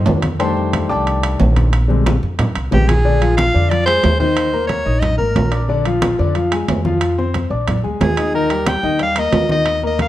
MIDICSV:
0, 0, Header, 1, 5, 480
1, 0, Start_track
1, 0, Tempo, 330761
1, 585, Time_signature, 4, 2, 24, 8
1, 14632, End_track
2, 0, Start_track
2, 0, Title_t, "Soprano saxophone"
2, 0, Program_c, 0, 64
2, 3970, Note_on_c, 0, 67, 96
2, 4179, Note_on_c, 0, 68, 92
2, 4201, Note_off_c, 0, 67, 0
2, 4882, Note_off_c, 0, 68, 0
2, 4891, Note_on_c, 0, 77, 99
2, 5367, Note_on_c, 0, 74, 94
2, 5388, Note_off_c, 0, 77, 0
2, 5591, Note_off_c, 0, 74, 0
2, 5599, Note_on_c, 0, 72, 101
2, 6057, Note_off_c, 0, 72, 0
2, 6089, Note_on_c, 0, 72, 88
2, 6765, Note_off_c, 0, 72, 0
2, 6783, Note_on_c, 0, 73, 86
2, 7250, Note_on_c, 0, 75, 97
2, 7272, Note_off_c, 0, 73, 0
2, 7506, Note_off_c, 0, 75, 0
2, 7515, Note_on_c, 0, 70, 82
2, 8197, Note_off_c, 0, 70, 0
2, 11642, Note_on_c, 0, 68, 83
2, 12079, Note_off_c, 0, 68, 0
2, 12113, Note_on_c, 0, 70, 98
2, 12599, Note_on_c, 0, 79, 91
2, 12620, Note_off_c, 0, 70, 0
2, 13071, Note_off_c, 0, 79, 0
2, 13100, Note_on_c, 0, 77, 105
2, 13336, Note_on_c, 0, 75, 103
2, 13358, Note_off_c, 0, 77, 0
2, 13799, Note_off_c, 0, 75, 0
2, 13807, Note_on_c, 0, 75, 96
2, 14242, Note_off_c, 0, 75, 0
2, 14319, Note_on_c, 0, 75, 85
2, 14516, Note_off_c, 0, 75, 0
2, 14538, Note_on_c, 0, 77, 94
2, 14632, Note_off_c, 0, 77, 0
2, 14632, End_track
3, 0, Start_track
3, 0, Title_t, "Grand piano"
3, 0, Program_c, 1, 0
3, 0, Note_on_c, 1, 50, 63
3, 103, Note_on_c, 1, 51, 44
3, 105, Note_on_c, 1, 58, 40
3, 115, Note_on_c, 1, 62, 52
3, 320, Note_off_c, 1, 51, 0
3, 321, Note_off_c, 1, 58, 0
3, 326, Note_off_c, 1, 62, 0
3, 533, Note_off_c, 1, 50, 0
3, 566, Note_on_c, 1, 51, 55
3, 571, Note_on_c, 1, 55, 59
3, 575, Note_on_c, 1, 84, 93
3, 577, Note_on_c, 1, 57, 55
3, 581, Note_on_c, 1, 79, 73
3, 581, Note_on_c, 1, 81, 73
3, 583, Note_on_c, 1, 62, 66
3, 586, Note_on_c, 1, 72, 70
3, 1249, Note_off_c, 1, 84, 0
3, 1252, Note_off_c, 1, 79, 0
3, 1252, Note_off_c, 1, 81, 0
3, 1255, Note_off_c, 1, 72, 0
3, 1298, Note_on_c, 1, 86, 91
3, 1306, Note_on_c, 1, 74, 78
3, 1308, Note_on_c, 1, 79, 74
3, 1308, Note_on_c, 1, 81, 77
3, 1970, Note_off_c, 1, 86, 0
3, 1975, Note_off_c, 1, 74, 0
3, 1975, Note_off_c, 1, 81, 0
3, 1976, Note_off_c, 1, 79, 0
3, 2437, Note_off_c, 1, 51, 0
3, 2439, Note_off_c, 1, 55, 0
3, 2442, Note_off_c, 1, 57, 0
3, 2445, Note_off_c, 1, 62, 0
3, 2729, Note_on_c, 1, 50, 63
3, 2740, Note_on_c, 1, 55, 55
3, 2744, Note_on_c, 1, 56, 56
3, 2748, Note_on_c, 1, 60, 63
3, 3055, Note_off_c, 1, 50, 0
3, 3061, Note_off_c, 1, 55, 0
3, 3063, Note_off_c, 1, 56, 0
3, 3065, Note_off_c, 1, 60, 0
3, 3935, Note_on_c, 1, 50, 47
3, 3937, Note_on_c, 1, 55, 44
3, 3941, Note_on_c, 1, 56, 42
3, 3951, Note_on_c, 1, 60, 57
3, 4155, Note_off_c, 1, 50, 0
3, 4156, Note_off_c, 1, 55, 0
3, 4158, Note_off_c, 1, 56, 0
3, 4163, Note_off_c, 1, 60, 0
3, 4422, Note_on_c, 1, 50, 75
3, 4423, Note_on_c, 1, 62, 76
3, 4431, Note_on_c, 1, 74, 83
3, 4619, Note_off_c, 1, 50, 0
3, 4620, Note_off_c, 1, 62, 0
3, 4624, Note_off_c, 1, 74, 0
3, 4662, Note_on_c, 1, 53, 75
3, 4665, Note_on_c, 1, 65, 76
3, 4668, Note_on_c, 1, 77, 66
3, 5056, Note_off_c, 1, 53, 0
3, 5058, Note_off_c, 1, 65, 0
3, 5059, Note_off_c, 1, 77, 0
3, 5140, Note_on_c, 1, 62, 73
3, 5141, Note_on_c, 1, 50, 70
3, 5146, Note_on_c, 1, 74, 75
3, 5338, Note_off_c, 1, 62, 0
3, 5339, Note_off_c, 1, 50, 0
3, 5341, Note_off_c, 1, 74, 0
3, 5378, Note_on_c, 1, 53, 75
3, 5383, Note_on_c, 1, 65, 73
3, 5386, Note_on_c, 1, 77, 73
3, 5577, Note_off_c, 1, 53, 0
3, 5580, Note_off_c, 1, 65, 0
3, 5582, Note_off_c, 1, 77, 0
3, 5606, Note_on_c, 1, 56, 63
3, 5611, Note_on_c, 1, 68, 71
3, 5617, Note_on_c, 1, 80, 66
3, 6006, Note_off_c, 1, 56, 0
3, 6010, Note_off_c, 1, 68, 0
3, 6013, Note_off_c, 1, 80, 0
3, 6090, Note_on_c, 1, 51, 81
3, 6097, Note_on_c, 1, 63, 82
3, 6102, Note_on_c, 1, 75, 75
3, 6489, Note_off_c, 1, 51, 0
3, 6493, Note_off_c, 1, 63, 0
3, 6496, Note_off_c, 1, 75, 0
3, 6572, Note_on_c, 1, 58, 75
3, 6578, Note_on_c, 1, 70, 74
3, 6579, Note_on_c, 1, 82, 80
3, 6970, Note_off_c, 1, 58, 0
3, 6973, Note_off_c, 1, 70, 0
3, 6974, Note_off_c, 1, 82, 0
3, 7046, Note_on_c, 1, 75, 68
3, 7047, Note_on_c, 1, 63, 68
3, 7053, Note_on_c, 1, 87, 61
3, 7446, Note_off_c, 1, 75, 0
3, 7447, Note_off_c, 1, 63, 0
3, 7450, Note_off_c, 1, 87, 0
3, 7520, Note_on_c, 1, 58, 61
3, 7526, Note_on_c, 1, 70, 68
3, 7529, Note_on_c, 1, 82, 68
3, 7923, Note_off_c, 1, 58, 0
3, 7926, Note_off_c, 1, 70, 0
3, 7928, Note_off_c, 1, 82, 0
3, 8001, Note_on_c, 1, 62, 65
3, 8006, Note_on_c, 1, 74, 72
3, 8012, Note_on_c, 1, 86, 67
3, 8207, Note_off_c, 1, 62, 0
3, 8210, Note_off_c, 1, 74, 0
3, 8213, Note_off_c, 1, 86, 0
3, 8253, Note_on_c, 1, 50, 84
3, 8258, Note_on_c, 1, 62, 85
3, 8265, Note_on_c, 1, 74, 90
3, 8454, Note_off_c, 1, 50, 0
3, 8456, Note_off_c, 1, 62, 0
3, 8461, Note_off_c, 1, 74, 0
3, 8498, Note_on_c, 1, 53, 81
3, 8505, Note_on_c, 1, 65, 75
3, 8509, Note_on_c, 1, 77, 80
3, 8893, Note_off_c, 1, 53, 0
3, 8898, Note_off_c, 1, 65, 0
3, 8900, Note_off_c, 1, 77, 0
3, 8977, Note_on_c, 1, 50, 78
3, 8986, Note_on_c, 1, 62, 75
3, 8990, Note_on_c, 1, 74, 79
3, 9176, Note_off_c, 1, 50, 0
3, 9181, Note_off_c, 1, 62, 0
3, 9184, Note_off_c, 1, 74, 0
3, 9223, Note_on_c, 1, 53, 68
3, 9226, Note_on_c, 1, 65, 73
3, 9233, Note_on_c, 1, 77, 75
3, 9420, Note_off_c, 1, 53, 0
3, 9421, Note_off_c, 1, 65, 0
3, 9425, Note_off_c, 1, 77, 0
3, 9462, Note_on_c, 1, 56, 71
3, 9467, Note_on_c, 1, 68, 66
3, 9470, Note_on_c, 1, 80, 72
3, 9856, Note_off_c, 1, 56, 0
3, 9858, Note_off_c, 1, 68, 0
3, 9860, Note_off_c, 1, 80, 0
3, 9937, Note_on_c, 1, 53, 71
3, 9943, Note_on_c, 1, 65, 84
3, 9947, Note_on_c, 1, 77, 76
3, 10333, Note_off_c, 1, 53, 0
3, 10336, Note_off_c, 1, 65, 0
3, 10339, Note_off_c, 1, 77, 0
3, 10424, Note_on_c, 1, 60, 75
3, 10425, Note_on_c, 1, 72, 82
3, 10429, Note_on_c, 1, 84, 71
3, 10817, Note_off_c, 1, 60, 0
3, 10817, Note_off_c, 1, 72, 0
3, 10820, Note_off_c, 1, 84, 0
3, 10887, Note_on_c, 1, 62, 73
3, 10893, Note_on_c, 1, 74, 63
3, 10897, Note_on_c, 1, 86, 66
3, 11287, Note_off_c, 1, 62, 0
3, 11290, Note_off_c, 1, 74, 0
3, 11293, Note_off_c, 1, 86, 0
3, 11369, Note_on_c, 1, 56, 67
3, 11374, Note_on_c, 1, 68, 70
3, 11376, Note_on_c, 1, 80, 58
3, 11768, Note_off_c, 1, 56, 0
3, 11771, Note_off_c, 1, 68, 0
3, 11772, Note_off_c, 1, 80, 0
3, 11863, Note_on_c, 1, 63, 68
3, 11870, Note_on_c, 1, 87, 72
3, 11872, Note_on_c, 1, 75, 60
3, 12059, Note_off_c, 1, 63, 0
3, 12064, Note_off_c, 1, 87, 0
3, 12065, Note_off_c, 1, 75, 0
3, 12104, Note_on_c, 1, 51, 77
3, 12107, Note_on_c, 1, 63, 82
3, 12115, Note_on_c, 1, 75, 78
3, 12300, Note_off_c, 1, 51, 0
3, 12302, Note_off_c, 1, 63, 0
3, 12307, Note_off_c, 1, 75, 0
3, 12342, Note_on_c, 1, 55, 72
3, 12352, Note_on_c, 1, 67, 70
3, 12352, Note_on_c, 1, 79, 72
3, 12736, Note_off_c, 1, 55, 0
3, 12742, Note_off_c, 1, 67, 0
3, 12742, Note_off_c, 1, 79, 0
3, 12811, Note_on_c, 1, 51, 69
3, 12818, Note_on_c, 1, 63, 74
3, 12823, Note_on_c, 1, 75, 79
3, 13012, Note_off_c, 1, 51, 0
3, 13017, Note_off_c, 1, 63, 0
3, 13020, Note_off_c, 1, 75, 0
3, 13061, Note_on_c, 1, 55, 74
3, 13065, Note_on_c, 1, 67, 78
3, 13070, Note_on_c, 1, 79, 72
3, 13258, Note_off_c, 1, 55, 0
3, 13261, Note_off_c, 1, 67, 0
3, 13264, Note_off_c, 1, 79, 0
3, 13307, Note_on_c, 1, 58, 69
3, 13308, Note_on_c, 1, 70, 64
3, 13319, Note_on_c, 1, 82, 70
3, 13699, Note_off_c, 1, 58, 0
3, 13699, Note_off_c, 1, 70, 0
3, 13706, Note_off_c, 1, 82, 0
3, 13785, Note_on_c, 1, 51, 78
3, 13785, Note_on_c, 1, 75, 70
3, 13786, Note_on_c, 1, 63, 77
3, 14177, Note_off_c, 1, 51, 0
3, 14178, Note_off_c, 1, 63, 0
3, 14178, Note_off_c, 1, 75, 0
3, 14265, Note_on_c, 1, 58, 81
3, 14268, Note_on_c, 1, 70, 72
3, 14271, Note_on_c, 1, 82, 75
3, 14632, Note_off_c, 1, 58, 0
3, 14632, Note_off_c, 1, 70, 0
3, 14632, Note_off_c, 1, 82, 0
3, 14632, End_track
4, 0, Start_track
4, 0, Title_t, "Upright bass"
4, 0, Program_c, 2, 32
4, 113, Note_on_c, 2, 41, 98
4, 1227, Note_off_c, 2, 41, 0
4, 1324, Note_on_c, 2, 36, 91
4, 1984, Note_off_c, 2, 36, 0
4, 2039, Note_on_c, 2, 34, 99
4, 3149, Note_off_c, 2, 34, 0
4, 3234, Note_on_c, 2, 41, 90
4, 3675, Note_off_c, 2, 41, 0
4, 3717, Note_on_c, 2, 36, 69
4, 3933, Note_off_c, 2, 36, 0
4, 3963, Note_on_c, 2, 34, 92
4, 5071, Note_off_c, 2, 34, 0
4, 5153, Note_on_c, 2, 41, 84
4, 5818, Note_off_c, 2, 41, 0
4, 5867, Note_on_c, 2, 39, 91
4, 6983, Note_off_c, 2, 39, 0
4, 7053, Note_on_c, 2, 34, 85
4, 7504, Note_off_c, 2, 34, 0
4, 7534, Note_on_c, 2, 32, 72
4, 7761, Note_off_c, 2, 32, 0
4, 7774, Note_on_c, 2, 34, 91
4, 8896, Note_off_c, 2, 34, 0
4, 8987, Note_on_c, 2, 41, 94
4, 9655, Note_off_c, 2, 41, 0
4, 9705, Note_on_c, 2, 41, 93
4, 10822, Note_off_c, 2, 41, 0
4, 10891, Note_on_c, 2, 34, 86
4, 11342, Note_off_c, 2, 34, 0
4, 11386, Note_on_c, 2, 38, 68
4, 11608, Note_off_c, 2, 38, 0
4, 11626, Note_on_c, 2, 39, 91
4, 12742, Note_off_c, 2, 39, 0
4, 12817, Note_on_c, 2, 39, 88
4, 13489, Note_off_c, 2, 39, 0
4, 13539, Note_on_c, 2, 39, 85
4, 14632, Note_off_c, 2, 39, 0
4, 14632, End_track
5, 0, Start_track
5, 0, Title_t, "Drums"
5, 84, Note_on_c, 9, 66, 90
5, 103, Note_on_c, 9, 63, 83
5, 230, Note_off_c, 9, 66, 0
5, 248, Note_off_c, 9, 63, 0
5, 325, Note_on_c, 9, 65, 78
5, 339, Note_on_c, 9, 63, 73
5, 470, Note_off_c, 9, 65, 0
5, 484, Note_off_c, 9, 63, 0
5, 575, Note_on_c, 9, 63, 36
5, 579, Note_on_c, 9, 65, 64
5, 720, Note_off_c, 9, 63, 0
5, 724, Note_off_c, 9, 65, 0
5, 825, Note_on_c, 9, 63, 33
5, 971, Note_off_c, 9, 63, 0
5, 1064, Note_on_c, 9, 63, 54
5, 1065, Note_on_c, 9, 65, 89
5, 1065, Note_on_c, 9, 66, 61
5, 1209, Note_off_c, 9, 63, 0
5, 1210, Note_off_c, 9, 65, 0
5, 1210, Note_off_c, 9, 66, 0
5, 1300, Note_on_c, 9, 63, 35
5, 1445, Note_off_c, 9, 63, 0
5, 1550, Note_on_c, 9, 63, 35
5, 1552, Note_on_c, 9, 65, 65
5, 1695, Note_off_c, 9, 63, 0
5, 1697, Note_off_c, 9, 65, 0
5, 1787, Note_on_c, 9, 63, 36
5, 1791, Note_on_c, 9, 65, 94
5, 1932, Note_off_c, 9, 63, 0
5, 1936, Note_off_c, 9, 65, 0
5, 2026, Note_on_c, 9, 66, 77
5, 2027, Note_on_c, 9, 63, 85
5, 2171, Note_off_c, 9, 66, 0
5, 2173, Note_off_c, 9, 63, 0
5, 2270, Note_on_c, 9, 65, 61
5, 2273, Note_on_c, 9, 63, 82
5, 2415, Note_off_c, 9, 65, 0
5, 2418, Note_off_c, 9, 63, 0
5, 2510, Note_on_c, 9, 65, 85
5, 2520, Note_on_c, 9, 63, 34
5, 2655, Note_off_c, 9, 65, 0
5, 2665, Note_off_c, 9, 63, 0
5, 2761, Note_on_c, 9, 63, 36
5, 2906, Note_off_c, 9, 63, 0
5, 2995, Note_on_c, 9, 65, 70
5, 2995, Note_on_c, 9, 66, 61
5, 3002, Note_on_c, 9, 63, 84
5, 3141, Note_off_c, 9, 65, 0
5, 3141, Note_off_c, 9, 66, 0
5, 3147, Note_off_c, 9, 63, 0
5, 3236, Note_on_c, 9, 63, 37
5, 3381, Note_off_c, 9, 63, 0
5, 3466, Note_on_c, 9, 65, 80
5, 3473, Note_on_c, 9, 63, 37
5, 3473, Note_on_c, 9, 64, 88
5, 3612, Note_off_c, 9, 65, 0
5, 3618, Note_off_c, 9, 63, 0
5, 3618, Note_off_c, 9, 64, 0
5, 3708, Note_on_c, 9, 65, 68
5, 3712, Note_on_c, 9, 63, 37
5, 3854, Note_off_c, 9, 65, 0
5, 3857, Note_off_c, 9, 63, 0
5, 3950, Note_on_c, 9, 63, 83
5, 3952, Note_on_c, 9, 66, 76
5, 4095, Note_off_c, 9, 63, 0
5, 4097, Note_off_c, 9, 66, 0
5, 4193, Note_on_c, 9, 65, 92
5, 4197, Note_on_c, 9, 63, 73
5, 4338, Note_off_c, 9, 65, 0
5, 4342, Note_off_c, 9, 63, 0
5, 4445, Note_on_c, 9, 63, 37
5, 4590, Note_off_c, 9, 63, 0
5, 4670, Note_on_c, 9, 65, 70
5, 4683, Note_on_c, 9, 63, 33
5, 4815, Note_off_c, 9, 65, 0
5, 4829, Note_off_c, 9, 63, 0
5, 4904, Note_on_c, 9, 65, 85
5, 4904, Note_on_c, 9, 66, 58
5, 4912, Note_on_c, 9, 63, 80
5, 5049, Note_off_c, 9, 65, 0
5, 5049, Note_off_c, 9, 66, 0
5, 5057, Note_off_c, 9, 63, 0
5, 5163, Note_on_c, 9, 63, 34
5, 5308, Note_off_c, 9, 63, 0
5, 5388, Note_on_c, 9, 63, 32
5, 5390, Note_on_c, 9, 65, 61
5, 5533, Note_off_c, 9, 63, 0
5, 5536, Note_off_c, 9, 65, 0
5, 5624, Note_on_c, 9, 65, 83
5, 5631, Note_on_c, 9, 63, 34
5, 5769, Note_off_c, 9, 65, 0
5, 5776, Note_off_c, 9, 63, 0
5, 5857, Note_on_c, 9, 65, 60
5, 5857, Note_on_c, 9, 66, 81
5, 5875, Note_on_c, 9, 63, 82
5, 6002, Note_off_c, 9, 65, 0
5, 6002, Note_off_c, 9, 66, 0
5, 6020, Note_off_c, 9, 63, 0
5, 6101, Note_on_c, 9, 63, 63
5, 6246, Note_off_c, 9, 63, 0
5, 6335, Note_on_c, 9, 65, 92
5, 6339, Note_on_c, 9, 63, 38
5, 6481, Note_off_c, 9, 65, 0
5, 6485, Note_off_c, 9, 63, 0
5, 6588, Note_on_c, 9, 63, 37
5, 6734, Note_off_c, 9, 63, 0
5, 6809, Note_on_c, 9, 65, 66
5, 6809, Note_on_c, 9, 66, 61
5, 6813, Note_on_c, 9, 63, 50
5, 6954, Note_off_c, 9, 65, 0
5, 6954, Note_off_c, 9, 66, 0
5, 6958, Note_off_c, 9, 63, 0
5, 7288, Note_on_c, 9, 63, 32
5, 7288, Note_on_c, 9, 64, 74
5, 7293, Note_on_c, 9, 65, 70
5, 7433, Note_off_c, 9, 63, 0
5, 7433, Note_off_c, 9, 64, 0
5, 7438, Note_off_c, 9, 65, 0
5, 7524, Note_on_c, 9, 63, 36
5, 7669, Note_off_c, 9, 63, 0
5, 7775, Note_on_c, 9, 63, 87
5, 7777, Note_on_c, 9, 65, 66
5, 7777, Note_on_c, 9, 66, 80
5, 7920, Note_off_c, 9, 63, 0
5, 7923, Note_off_c, 9, 65, 0
5, 7923, Note_off_c, 9, 66, 0
5, 8006, Note_on_c, 9, 65, 72
5, 8016, Note_on_c, 9, 63, 31
5, 8151, Note_off_c, 9, 65, 0
5, 8162, Note_off_c, 9, 63, 0
5, 8244, Note_on_c, 9, 63, 36
5, 8390, Note_off_c, 9, 63, 0
5, 8496, Note_on_c, 9, 65, 65
5, 8498, Note_on_c, 9, 63, 34
5, 8641, Note_off_c, 9, 65, 0
5, 8643, Note_off_c, 9, 63, 0
5, 8736, Note_on_c, 9, 63, 82
5, 8737, Note_on_c, 9, 65, 91
5, 8737, Note_on_c, 9, 66, 60
5, 8881, Note_off_c, 9, 63, 0
5, 8882, Note_off_c, 9, 65, 0
5, 8882, Note_off_c, 9, 66, 0
5, 8983, Note_on_c, 9, 63, 34
5, 9128, Note_off_c, 9, 63, 0
5, 9216, Note_on_c, 9, 65, 54
5, 9234, Note_on_c, 9, 63, 37
5, 9362, Note_off_c, 9, 65, 0
5, 9379, Note_off_c, 9, 63, 0
5, 9460, Note_on_c, 9, 65, 95
5, 9464, Note_on_c, 9, 63, 33
5, 9605, Note_off_c, 9, 65, 0
5, 9609, Note_off_c, 9, 63, 0
5, 9700, Note_on_c, 9, 63, 81
5, 9702, Note_on_c, 9, 65, 69
5, 9702, Note_on_c, 9, 66, 76
5, 9845, Note_off_c, 9, 63, 0
5, 9847, Note_off_c, 9, 65, 0
5, 9847, Note_off_c, 9, 66, 0
5, 9939, Note_on_c, 9, 63, 73
5, 10084, Note_off_c, 9, 63, 0
5, 10173, Note_on_c, 9, 65, 89
5, 10181, Note_on_c, 9, 63, 33
5, 10319, Note_off_c, 9, 65, 0
5, 10326, Note_off_c, 9, 63, 0
5, 10433, Note_on_c, 9, 63, 36
5, 10579, Note_off_c, 9, 63, 0
5, 10657, Note_on_c, 9, 65, 68
5, 10657, Note_on_c, 9, 66, 54
5, 10667, Note_on_c, 9, 63, 50
5, 10802, Note_off_c, 9, 65, 0
5, 10802, Note_off_c, 9, 66, 0
5, 10812, Note_off_c, 9, 63, 0
5, 11139, Note_on_c, 9, 65, 77
5, 11151, Note_on_c, 9, 63, 34
5, 11151, Note_on_c, 9, 64, 75
5, 11284, Note_off_c, 9, 65, 0
5, 11296, Note_off_c, 9, 63, 0
5, 11296, Note_off_c, 9, 64, 0
5, 11384, Note_on_c, 9, 63, 35
5, 11529, Note_off_c, 9, 63, 0
5, 11621, Note_on_c, 9, 63, 85
5, 11627, Note_on_c, 9, 65, 63
5, 11627, Note_on_c, 9, 66, 82
5, 11766, Note_off_c, 9, 63, 0
5, 11772, Note_off_c, 9, 65, 0
5, 11772, Note_off_c, 9, 66, 0
5, 11858, Note_on_c, 9, 63, 29
5, 11861, Note_on_c, 9, 65, 81
5, 12003, Note_off_c, 9, 63, 0
5, 12006, Note_off_c, 9, 65, 0
5, 12105, Note_on_c, 9, 63, 38
5, 12250, Note_off_c, 9, 63, 0
5, 12338, Note_on_c, 9, 65, 76
5, 12346, Note_on_c, 9, 63, 34
5, 12483, Note_off_c, 9, 65, 0
5, 12491, Note_off_c, 9, 63, 0
5, 12574, Note_on_c, 9, 65, 94
5, 12574, Note_on_c, 9, 66, 55
5, 12576, Note_on_c, 9, 63, 85
5, 12719, Note_off_c, 9, 65, 0
5, 12719, Note_off_c, 9, 66, 0
5, 12721, Note_off_c, 9, 63, 0
5, 12813, Note_on_c, 9, 63, 35
5, 12958, Note_off_c, 9, 63, 0
5, 13051, Note_on_c, 9, 65, 61
5, 13058, Note_on_c, 9, 63, 33
5, 13196, Note_off_c, 9, 65, 0
5, 13203, Note_off_c, 9, 63, 0
5, 13290, Note_on_c, 9, 65, 89
5, 13300, Note_on_c, 9, 63, 34
5, 13435, Note_off_c, 9, 65, 0
5, 13445, Note_off_c, 9, 63, 0
5, 13532, Note_on_c, 9, 65, 66
5, 13532, Note_on_c, 9, 66, 83
5, 13539, Note_on_c, 9, 63, 80
5, 13677, Note_off_c, 9, 65, 0
5, 13677, Note_off_c, 9, 66, 0
5, 13684, Note_off_c, 9, 63, 0
5, 13775, Note_on_c, 9, 63, 69
5, 13920, Note_off_c, 9, 63, 0
5, 14012, Note_on_c, 9, 65, 85
5, 14013, Note_on_c, 9, 63, 33
5, 14157, Note_off_c, 9, 65, 0
5, 14158, Note_off_c, 9, 63, 0
5, 14250, Note_on_c, 9, 63, 35
5, 14395, Note_off_c, 9, 63, 0
5, 14497, Note_on_c, 9, 63, 57
5, 14502, Note_on_c, 9, 65, 64
5, 14502, Note_on_c, 9, 66, 61
5, 14632, Note_off_c, 9, 63, 0
5, 14632, Note_off_c, 9, 65, 0
5, 14632, Note_off_c, 9, 66, 0
5, 14632, End_track
0, 0, End_of_file